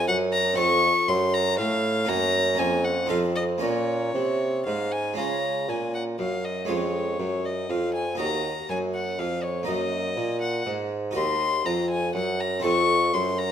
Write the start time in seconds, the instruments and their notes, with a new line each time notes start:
Already playing: harpsichord D#4 F#4 A#4
0.07 bassoon F#2, harpsichord F#2, violin F#5
0.33 violin A#5
0.54 harpsichord C4 F4 A4
0.58 bassoon F2, harpsichord F2, violin C#6
1.08 bassoon F#2, harpsichord F#2, violin C6
1.34 violin A#5
1.58 bassoon A2, harpsichord A2, violin F5
2.05 bassoon F#2, harpsichord A#3 C#4 A#4, violin A#5
2.09 harpsichord F#2
2.55 harpsichord A#3 C#4 A#4, violin G#5
2.59 bassoon F2, harpsichord F2
2.84 violin F#5
3.06 harpsichord C4 D#4 A4, violin F5
3.10 bassoon F2, harpsichord F2
3.36 violin D#5
3.58 bassoon A#2, harpsichord A#3 C#4 A#4, violin C#5
3.62 harpsichord A#2
4.14 bassoon C3, harpsichord C3
4.66 bassoon G#2, harpsichord G#2, violin F5
4.91 violin G#5
5.14 harpsichord G#3 C#4 F4, violin A#5
5.18 bassoon C#3, harpsichord C#3
5.68 bassoon A#2, harpsichord A#2, violin G#5
5.94 violin F#5
6.19 harpsichord F#2, bassoon F#2, violin F5
6.44 violin D#5
6.65 bassoon F2, harpsichord G#3 C#4 F4, violin C#5
6.69 harpsichord F2
7.19 bassoon F#2, harpsichord F#2
7.45 violin D#5
7.69 bassoon F2, harpsichord F2, violin F5
7.94 violin G#5
8.15 bassoon D#2, harpsichord A#3 D#4 F#4
8.19 harpsichord D#2, violin A#5
8.70 harpsichord F#2, bassoon F#2, violin G#5
8.95 violin F#5
9.19 bassoon F2, harpsichord F2, violin F5
9.43 violin C#5
9.63 harpsichord A#3 D#4 A#4
9.67 bassoon F#2, harpsichord F#2, violin D#5
10.17 bassoon A#2, harpsichord A#2
10.41 violin F#5
10.66 bassoon G#2, harpsichord G#2
11.11 harpsichord D#4 F#4 A#4
11.15 bassoon D#2, harpsichord D#2, violin C6
11.65 bassoon F2, harpsichord F2, violin A#5
11.90 violin G#5
12.14 bassoon F#2, harpsichord F#2, violin F#5
12.40 violin A#5
12.60 bassoon F2, harpsichord C4 F4 A4
12.64 harpsichord F2, violin C#6
13.13 bassoon F#2, harpsichord F#2, violin C6
13.38 violin A#5